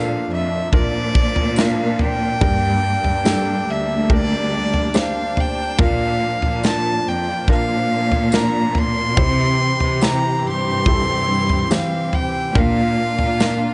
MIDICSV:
0, 0, Header, 1, 6, 480
1, 0, Start_track
1, 0, Tempo, 845070
1, 1373, Time_signature, 4, 2, 24, 8
1, 7803, End_track
2, 0, Start_track
2, 0, Title_t, "Violin"
2, 0, Program_c, 0, 40
2, 0, Note_on_c, 0, 77, 93
2, 160, Note_off_c, 0, 77, 0
2, 186, Note_on_c, 0, 76, 80
2, 403, Note_off_c, 0, 76, 0
2, 420, Note_on_c, 0, 74, 99
2, 907, Note_on_c, 0, 77, 85
2, 915, Note_off_c, 0, 74, 0
2, 1143, Note_on_c, 0, 79, 108
2, 1151, Note_off_c, 0, 77, 0
2, 2103, Note_on_c, 0, 76, 90
2, 2112, Note_off_c, 0, 79, 0
2, 2342, Note_on_c, 0, 74, 104
2, 2351, Note_off_c, 0, 76, 0
2, 2817, Note_off_c, 0, 74, 0
2, 2821, Note_on_c, 0, 77, 95
2, 3069, Note_on_c, 0, 79, 98
2, 3078, Note_off_c, 0, 77, 0
2, 3298, Note_off_c, 0, 79, 0
2, 3302, Note_on_c, 0, 77, 105
2, 3754, Note_off_c, 0, 77, 0
2, 3782, Note_on_c, 0, 81, 108
2, 4022, Note_on_c, 0, 79, 96
2, 4031, Note_off_c, 0, 81, 0
2, 4257, Note_off_c, 0, 79, 0
2, 4264, Note_on_c, 0, 77, 110
2, 4741, Note_on_c, 0, 82, 103
2, 4750, Note_off_c, 0, 77, 0
2, 4987, Note_on_c, 0, 84, 119
2, 4995, Note_off_c, 0, 82, 0
2, 5698, Note_on_c, 0, 82, 104
2, 5707, Note_off_c, 0, 84, 0
2, 5944, Note_on_c, 0, 84, 110
2, 5952, Note_off_c, 0, 82, 0
2, 6658, Note_off_c, 0, 84, 0
2, 6666, Note_on_c, 0, 77, 96
2, 6899, Note_on_c, 0, 79, 97
2, 6908, Note_off_c, 0, 77, 0
2, 7144, Note_on_c, 0, 77, 104
2, 7152, Note_off_c, 0, 79, 0
2, 7803, Note_off_c, 0, 77, 0
2, 7803, End_track
3, 0, Start_track
3, 0, Title_t, "Felt piano"
3, 0, Program_c, 1, 0
3, 0, Control_c, 1, 64, 127
3, 0, Note_on_c, 1, 46, 67
3, 0, Note_on_c, 1, 62, 68
3, 0, Note_on_c, 1, 65, 65
3, 0, Note_on_c, 1, 69, 74
3, 0, Note_on_c, 1, 70, 85
3, 153, Note_off_c, 1, 46, 0
3, 389, Note_off_c, 1, 62, 0
3, 389, Note_off_c, 1, 65, 0
3, 391, Note_off_c, 1, 69, 0
3, 412, Note_on_c, 1, 62, 63
3, 415, Note_on_c, 1, 65, 62
3, 417, Note_off_c, 1, 70, 0
3, 417, Note_on_c, 1, 70, 71
3, 868, Note_off_c, 1, 62, 0
3, 870, Note_off_c, 1, 65, 0
3, 871, Note_off_c, 1, 70, 0
3, 891, Note_on_c, 1, 62, 74
3, 894, Note_on_c, 1, 65, 67
3, 897, Note_on_c, 1, 70, 82
3, 1348, Note_off_c, 1, 62, 0
3, 1349, Note_off_c, 1, 65, 0
3, 1351, Note_off_c, 1, 70, 0
3, 1368, Note_on_c, 1, 62, 73
3, 1369, Note_on_c, 1, 43, 67
3, 1369, Note_on_c, 1, 67, 65
3, 1372, Note_on_c, 1, 70, 77
3, 1381, Control_c, 1, 64, 0
3, 1492, Control_c, 1, 64, 127
3, 1826, Note_off_c, 1, 62, 0
3, 1827, Note_off_c, 1, 67, 0
3, 1828, Note_off_c, 1, 70, 0
3, 1845, Note_on_c, 1, 62, 82
3, 1849, Note_on_c, 1, 67, 69
3, 1852, Note_on_c, 1, 69, 83
3, 2068, Note_off_c, 1, 43, 0
3, 2305, Note_off_c, 1, 62, 0
3, 2307, Note_off_c, 1, 67, 0
3, 2308, Note_off_c, 1, 69, 0
3, 2327, Note_on_c, 1, 62, 68
3, 2328, Note_on_c, 1, 67, 60
3, 2331, Note_on_c, 1, 70, 74
3, 2786, Note_off_c, 1, 62, 0
3, 2786, Note_off_c, 1, 67, 0
3, 2788, Note_off_c, 1, 70, 0
3, 2807, Note_on_c, 1, 62, 74
3, 2809, Note_on_c, 1, 67, 71
3, 2812, Note_on_c, 1, 72, 90
3, 3266, Note_off_c, 1, 62, 0
3, 3267, Note_off_c, 1, 67, 0
3, 3268, Note_off_c, 1, 72, 0
3, 3286, Note_on_c, 1, 62, 73
3, 3289, Note_on_c, 1, 46, 68
3, 3289, Note_on_c, 1, 65, 70
3, 3292, Note_on_c, 1, 70, 81
3, 3300, Control_c, 1, 64, 0
3, 3407, Control_c, 1, 64, 127
3, 3746, Note_off_c, 1, 62, 0
3, 3747, Note_off_c, 1, 65, 0
3, 3749, Note_off_c, 1, 70, 0
3, 3769, Note_on_c, 1, 62, 69
3, 3770, Note_on_c, 1, 65, 67
3, 3775, Note_on_c, 1, 70, 75
3, 3988, Note_off_c, 1, 46, 0
3, 4227, Note_off_c, 1, 62, 0
3, 4228, Note_off_c, 1, 65, 0
3, 4230, Note_off_c, 1, 70, 0
3, 4252, Note_on_c, 1, 62, 69
3, 4255, Note_on_c, 1, 65, 67
3, 4256, Note_on_c, 1, 70, 79
3, 4708, Note_off_c, 1, 62, 0
3, 4710, Note_off_c, 1, 65, 0
3, 4710, Note_off_c, 1, 70, 0
3, 4732, Note_on_c, 1, 62, 78
3, 4736, Note_on_c, 1, 65, 72
3, 4736, Note_on_c, 1, 70, 89
3, 5188, Note_off_c, 1, 62, 0
3, 5190, Note_off_c, 1, 65, 0
3, 5190, Note_off_c, 1, 70, 0
3, 5209, Note_on_c, 1, 64, 77
3, 5211, Note_on_c, 1, 48, 67
3, 5213, Note_on_c, 1, 67, 74
3, 5214, Note_on_c, 1, 72, 84
3, 5220, Control_c, 1, 64, 0
3, 5311, Control_c, 1, 64, 127
3, 5667, Note_off_c, 1, 64, 0
3, 5669, Note_off_c, 1, 67, 0
3, 5669, Note_off_c, 1, 72, 0
3, 5687, Note_on_c, 1, 64, 66
3, 5692, Note_on_c, 1, 67, 63
3, 5694, Note_on_c, 1, 72, 73
3, 5909, Note_off_c, 1, 48, 0
3, 6146, Note_off_c, 1, 64, 0
3, 6148, Note_off_c, 1, 67, 0
3, 6149, Note_off_c, 1, 72, 0
3, 6170, Note_on_c, 1, 64, 69
3, 6173, Note_on_c, 1, 67, 64
3, 6176, Note_on_c, 1, 69, 81
3, 6627, Note_off_c, 1, 64, 0
3, 6629, Note_off_c, 1, 67, 0
3, 6630, Note_off_c, 1, 69, 0
3, 6648, Note_on_c, 1, 52, 79
3, 6650, Note_on_c, 1, 67, 73
3, 6654, Note_on_c, 1, 72, 84
3, 7106, Note_off_c, 1, 52, 0
3, 7107, Note_off_c, 1, 67, 0
3, 7109, Note_off_c, 1, 72, 0
3, 7127, Note_on_c, 1, 46, 62
3, 7128, Note_on_c, 1, 62, 75
3, 7132, Note_on_c, 1, 65, 66
3, 7133, Note_on_c, 1, 70, 81
3, 7140, Control_c, 1, 64, 0
3, 7242, Control_c, 1, 64, 127
3, 7586, Note_off_c, 1, 62, 0
3, 7588, Note_off_c, 1, 65, 0
3, 7589, Note_off_c, 1, 70, 0
3, 7613, Note_on_c, 1, 62, 70
3, 7613, Note_on_c, 1, 65, 65
3, 7619, Note_on_c, 1, 70, 76
3, 7803, Note_off_c, 1, 46, 0
3, 7803, Note_off_c, 1, 62, 0
3, 7803, Note_off_c, 1, 65, 0
3, 7803, Note_off_c, 1, 70, 0
3, 7803, End_track
4, 0, Start_track
4, 0, Title_t, "String section"
4, 0, Program_c, 2, 48
4, 0, Note_on_c, 2, 53, 81
4, 0, Note_on_c, 2, 58, 71
4, 0, Note_on_c, 2, 62, 89
4, 1355, Note_off_c, 2, 53, 0
4, 1371, Note_on_c, 2, 55, 76
4, 3272, Note_off_c, 2, 55, 0
4, 3289, Note_on_c, 2, 53, 80
4, 5191, Note_off_c, 2, 62, 0
4, 5192, Note_off_c, 2, 53, 0
4, 5193, Note_off_c, 2, 58, 0
4, 5207, Note_on_c, 2, 48, 83
4, 5207, Note_on_c, 2, 60, 79
4, 5208, Note_on_c, 2, 52, 75
4, 5211, Note_on_c, 2, 67, 89
4, 7111, Note_off_c, 2, 48, 0
4, 7111, Note_off_c, 2, 52, 0
4, 7111, Note_off_c, 2, 60, 0
4, 7112, Note_off_c, 2, 67, 0
4, 7128, Note_on_c, 2, 58, 81
4, 7129, Note_on_c, 2, 62, 73
4, 7133, Note_on_c, 2, 65, 94
4, 7803, Note_off_c, 2, 58, 0
4, 7803, Note_off_c, 2, 62, 0
4, 7803, Note_off_c, 2, 65, 0
4, 7803, End_track
5, 0, Start_track
5, 0, Title_t, "Cello section"
5, 0, Program_c, 3, 48
5, 0, Note_on_c, 3, 46, 93
5, 152, Note_off_c, 3, 46, 0
5, 175, Note_on_c, 3, 41, 85
5, 397, Note_off_c, 3, 41, 0
5, 412, Note_on_c, 3, 46, 108
5, 1350, Note_off_c, 3, 46, 0
5, 1372, Note_on_c, 3, 43, 106
5, 1709, Note_off_c, 3, 43, 0
5, 1730, Note_on_c, 3, 43, 93
5, 2069, Note_off_c, 3, 43, 0
5, 2090, Note_on_c, 3, 38, 100
5, 3028, Note_off_c, 3, 38, 0
5, 3290, Note_on_c, 3, 46, 105
5, 3629, Note_off_c, 3, 46, 0
5, 3654, Note_on_c, 3, 46, 94
5, 3990, Note_off_c, 3, 46, 0
5, 4016, Note_on_c, 3, 41, 82
5, 4237, Note_off_c, 3, 41, 0
5, 4248, Note_on_c, 3, 46, 105
5, 5210, Note_off_c, 3, 46, 0
5, 5211, Note_on_c, 3, 48, 111
5, 5549, Note_off_c, 3, 48, 0
5, 5567, Note_on_c, 3, 48, 91
5, 5907, Note_off_c, 3, 48, 0
5, 5932, Note_on_c, 3, 43, 96
5, 6869, Note_off_c, 3, 43, 0
5, 7131, Note_on_c, 3, 46, 114
5, 7469, Note_off_c, 3, 46, 0
5, 7492, Note_on_c, 3, 46, 97
5, 7803, Note_off_c, 3, 46, 0
5, 7803, End_track
6, 0, Start_track
6, 0, Title_t, "Drums"
6, 413, Note_on_c, 9, 36, 86
6, 416, Note_on_c, 9, 43, 66
6, 470, Note_off_c, 9, 36, 0
6, 473, Note_off_c, 9, 43, 0
6, 654, Note_on_c, 9, 36, 93
6, 711, Note_off_c, 9, 36, 0
6, 772, Note_on_c, 9, 43, 64
6, 829, Note_off_c, 9, 43, 0
6, 887, Note_on_c, 9, 54, 84
6, 901, Note_on_c, 9, 38, 109
6, 944, Note_off_c, 9, 54, 0
6, 958, Note_off_c, 9, 38, 0
6, 1132, Note_on_c, 9, 43, 68
6, 1189, Note_off_c, 9, 43, 0
6, 1371, Note_on_c, 9, 36, 108
6, 1371, Note_on_c, 9, 43, 104
6, 1428, Note_off_c, 9, 36, 0
6, 1428, Note_off_c, 9, 43, 0
6, 1729, Note_on_c, 9, 43, 62
6, 1786, Note_off_c, 9, 43, 0
6, 1848, Note_on_c, 9, 54, 82
6, 1853, Note_on_c, 9, 38, 108
6, 1905, Note_off_c, 9, 54, 0
6, 1910, Note_off_c, 9, 38, 0
6, 2328, Note_on_c, 9, 36, 86
6, 2329, Note_on_c, 9, 43, 63
6, 2384, Note_off_c, 9, 36, 0
6, 2386, Note_off_c, 9, 43, 0
6, 2691, Note_on_c, 9, 43, 57
6, 2747, Note_off_c, 9, 43, 0
6, 2806, Note_on_c, 9, 54, 90
6, 2817, Note_on_c, 9, 38, 104
6, 2863, Note_off_c, 9, 54, 0
6, 2873, Note_off_c, 9, 38, 0
6, 3051, Note_on_c, 9, 43, 70
6, 3107, Note_off_c, 9, 43, 0
6, 3286, Note_on_c, 9, 43, 106
6, 3289, Note_on_c, 9, 36, 113
6, 3343, Note_off_c, 9, 43, 0
6, 3346, Note_off_c, 9, 36, 0
6, 3648, Note_on_c, 9, 43, 62
6, 3705, Note_off_c, 9, 43, 0
6, 3769, Note_on_c, 9, 54, 77
6, 3775, Note_on_c, 9, 38, 107
6, 3825, Note_off_c, 9, 54, 0
6, 3832, Note_off_c, 9, 38, 0
6, 4248, Note_on_c, 9, 36, 87
6, 4305, Note_off_c, 9, 36, 0
6, 4610, Note_on_c, 9, 43, 63
6, 4667, Note_off_c, 9, 43, 0
6, 4726, Note_on_c, 9, 54, 91
6, 4737, Note_on_c, 9, 38, 108
6, 4783, Note_off_c, 9, 54, 0
6, 4794, Note_off_c, 9, 38, 0
6, 4970, Note_on_c, 9, 43, 71
6, 5026, Note_off_c, 9, 43, 0
6, 5209, Note_on_c, 9, 43, 99
6, 5210, Note_on_c, 9, 36, 115
6, 5266, Note_off_c, 9, 43, 0
6, 5267, Note_off_c, 9, 36, 0
6, 5568, Note_on_c, 9, 43, 62
6, 5625, Note_off_c, 9, 43, 0
6, 5688, Note_on_c, 9, 54, 85
6, 5695, Note_on_c, 9, 38, 106
6, 5745, Note_off_c, 9, 54, 0
6, 5752, Note_off_c, 9, 38, 0
6, 6168, Note_on_c, 9, 43, 67
6, 6169, Note_on_c, 9, 36, 91
6, 6225, Note_off_c, 9, 36, 0
6, 6225, Note_off_c, 9, 43, 0
6, 6529, Note_on_c, 9, 43, 62
6, 6585, Note_off_c, 9, 43, 0
6, 6650, Note_on_c, 9, 54, 91
6, 6656, Note_on_c, 9, 38, 113
6, 6707, Note_off_c, 9, 54, 0
6, 6713, Note_off_c, 9, 38, 0
6, 6889, Note_on_c, 9, 43, 65
6, 6946, Note_off_c, 9, 43, 0
6, 7131, Note_on_c, 9, 43, 102
6, 7132, Note_on_c, 9, 36, 115
6, 7187, Note_off_c, 9, 43, 0
6, 7188, Note_off_c, 9, 36, 0
6, 7489, Note_on_c, 9, 43, 65
6, 7546, Note_off_c, 9, 43, 0
6, 7612, Note_on_c, 9, 54, 81
6, 7615, Note_on_c, 9, 38, 104
6, 7669, Note_off_c, 9, 54, 0
6, 7672, Note_off_c, 9, 38, 0
6, 7803, End_track
0, 0, End_of_file